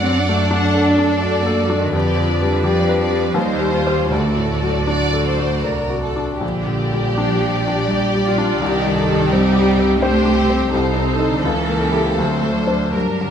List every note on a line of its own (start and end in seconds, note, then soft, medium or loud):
0.00 1.89 F#2 soft
0.00 1.94 F#2 medium
0.00 0.42 F#3 soft
0.00 0.18 C4 medium
0.00 1.22 D4 soft
0.00 0.53 D5 soft
0.00 0.51 F#5 medium
0.17 1.41 D4 medium
0.29 0.66 A3 soft
0.51 0.89 D4 medium
0.51 1.95 A4 soft
0.51 0.87 F#5 medium
0.75 1.13 A4 soft
0.89 1.94 D5 medium
0.99 1.37 D4 soft
1.22 1.92 F#4 medium
1.22 1.60 D5 medium
1.42 1.59 A#3 medium
1.46 1.84 A4 medium
1.60 1.77 G3 medium
1.70 1.94 D4 medium
1.77 1.94 D#3 medium
1.93 3.31 F2 medium
1.93 3.33 F2 medium
1.93 2.64 D3 medium
1.93 2.28 G4 medium
1.93 3.33 B4 soft
1.93 2.63 D5 medium
2.16 2.54 F3 soft
2.28 3.35 D4 soft
2.42 2.79 G3 soft
2.64 3.36 F3 medium
2.64 3.02 G4 medium
2.64 2.99 D5 medium
2.89 3.27 B4 soft
3.00 3.35 D5 soft
3.11 3.36 G4 soft
3.34 4.08 D#2 medium
3.34 4.09 D#2 medium
3.34 4.11 G3 medium
3.34 3.72 D#4 medium
3.34 4.10 C5 medium
3.60 4.00 G3 soft
3.72 4.10 F4 medium
3.86 4.09 G4 soft
3.86 4.09 C5 soft
4.10 5.65 D2 medium
4.10 5.62 D2 soft
4.10 5.22 D3 medium
4.10 5.62 A3 medium
4.10 6.21 F#4 medium
4.10 4.79 A4 soft
4.10 6.22 D5 medium
4.36 4.77 A2 soft
4.62 5.03 F#3 soft
4.88 5.29 D4 soft
4.88 5.24 D5 medium
5.13 5.55 A4 soft
5.26 5.64 C5 soft
5.40 5.81 F#4 soft
5.64 6.22 C2 soft
5.64 6.03 A#4 soft
5.64 6.07 D5 soft
5.90 6.32 F#4 soft
6.04 6.42 A4 soft
6.16 6.42 D4 soft
6.41 8.56 A#1 soft
6.41 8.57 A#1 soft
6.41 7.13 D3 medium
6.41 8.56 G4 soft
6.41 7.86 G4 soft
6.41 9.96 D5 soft
6.67 7.07 A#2 soft
6.91 7.31 G3 soft
7.17 7.89 F3 medium
7.17 7.56 D4 soft
7.42 7.80 G4 soft
7.68 8.05 D4 soft
7.88 8.60 G3 medium
7.88 8.24 G4 medium
7.88 8.28 D5 soft
8.15 8.52 G4 medium
8.26 8.61 F4 medium
8.38 8.61 D4 soft
8.60 10.68 C2 medium
8.60 9.29 D#3 medium
8.60 10.01 D#4 medium
8.60 8.95 G4 medium
8.86 9.22 G2 soft
8.94 9.30 A4 medium
9.08 9.45 G3 medium
9.29 10.00 G3 medium
9.29 9.69 C4 medium
9.29 10.00 G4 medium
9.56 9.92 G4 medium
9.79 10.16 C4 soft
10.00 10.72 A3 medium
10.00 10.36 D4 medium
10.00 10.71 G4 medium
10.00 10.70 C5 medium
10.00 10.39 C5 medium
10.26 10.63 G4 medium
10.36 10.72 C4 medium
10.50 10.73 C4 medium
10.71 11.42 C2 medium
10.71 11.43 C2 medium
10.71 11.25 C3 medium
10.71 11.43 D#4 medium
10.71 12.95 A4 medium
10.71 11.42 C5 medium
10.97 11.35 C4 soft
11.19 11.41 D#4 soft
11.19 11.42 A4 medium
11.27 11.44 D3 medium
11.43 12.15 C#2 medium
11.43 12.16 E3 medium
11.43 12.16 C#4 soft
11.43 11.79 A4 soft
11.69 12.07 A#3 soft
11.80 12.17 G4 soft
11.92 12.14 E4 soft
11.92 12.15 G4 soft
12.15 12.94 D2 soft
12.15 12.92 D2 medium
12.15 12.93 F#3 medium
12.15 12.56 C4 soft
12.15 12.92 C5 medium
12.41 12.83 A3 soft
12.56 12.94 D4 soft
12.67 12.91 D4 soft
12.67 12.91 C5 soft
12.93 13.30 G2 soft
12.93 13.30 F#3 medium
12.93 13.30 D4 soft
12.93 13.30 A#4 soft
13.21 13.30 D3 soft